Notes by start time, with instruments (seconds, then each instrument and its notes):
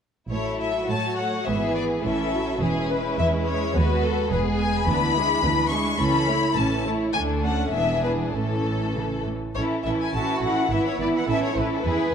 0.30 double bass section A1, cello section A2, viola section F#3 A3, violin section E4 A4 C#5
0.60 violin section E5
0.88 double bass section A2, cello section A3, viola section A3, violin section F#4 C#5 A5
1.18 violin section F#5
1.45 double bass section G#1, cello section G#2, viola section E3 B3, violin section G#4 B4 E5
1.75 violin section D5
2.03 double bass section A1, cello section A2, viola section E3 C#4, violin section E4 A4 E5
2.33 viola section F#3
2.60 double bass section E1, cello section E2, viola section G#3 C#4, violin section E4 G#4 B4
2.90 violin section B4
3.17 double bass section E2, cello section E3, violin section E5
3.46 violin section C#5
3.74 cello section D#2, double bass section D#2, viola section B3, violin section F#4 B4
4.03 violin section A4
4.31 double bass section E1, cello section E2, viola section G#3 B3, violin section G#4 B4
4.58 violin section G#5
4.87 cello section D2, double bass section D2, viola section E3 B3, violin section D4 B4 B5
5.15 viola section G#3 D4, violin section E4 G#4
5.43 cello section D2, double bass section D2, viola section E3 B3, violin section D4 B4
5.71 viola section G#3 D4, violin section E4 G#4 C#6
5.99 cello section C#2, double bass section C#2, viola section E3 C#4, violin section C#4 A4 B5
6.28 viola section A3 E4, violin section E4 C#5
6.56 double bass section A1, cello section A2, viola section E3 C#4, violin section C#4 A4 A5
6.85 viola section A3 E4, violin section E4 C#5
7.13 cello section D2, double bass section D2, viola section A3 D4, violin section D4 A4 G#5
7.43 viola section C#4, violin section F#5
7.72 double bass section E1, cello section E2, viola section E3 B3, violin section D4 G#4 E5
8.03 violin section B4
8.33 double bass section A1, cello section A2, viola section E3 A3, violin section C#4 A4
8.95 cello section C#3
9.26 cello section A2
9.55 double bass section A1, viola section E3 C#4, violin section E4 A4 C#5
9.85 double bass section A1, viola section E3 C#4, violin section E4 A4 E5
10.01 violin section G#5
10.13 double bass section A1, viola section E3 C#4, violin section E4 A4 A5, cello section F#4
10.42 double bass section A1, viola section E3 C#4, violin section E4 A4 F#5
10.70 double bass section G#1, viola section E3 B3, violin section E4 B4 E5, cello section E4
10.87 violin section C#5
10.99 double bass section G#1, viola section E3 B3, violin section E4 B4 D5
11.16 violin section F#5
11.28 double bass section A1, viola section E3 C#4, violin section E4 A4 E5
11.44 violin section C#5
11.56 double bass section A1, viola section E3 C#4, violin section E4 A4 B4
11.73 violin section A4
11.84 double bass section E2, viola section E3 B3, violin section E4 G#4 B4, cello section B4